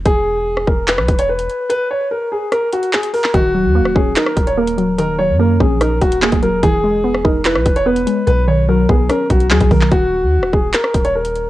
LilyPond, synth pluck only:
\new Staff \with { instrumentName = "Synth pluck" } { \time 4/4 \key ees \phrygian \tempo 4 = 146 r1 | r1 | ees8 ges8 bes8 des'8 ees'4 bes8 ges8 | ees8 ges8 bes8 des'8 ees'4 bes8 ges8 |
e8 gis8 b8 dis'8 e'4 b8 gis8 | b,8 dis8 fis8 b8 cis'4 fis8 dis8 | r1 | }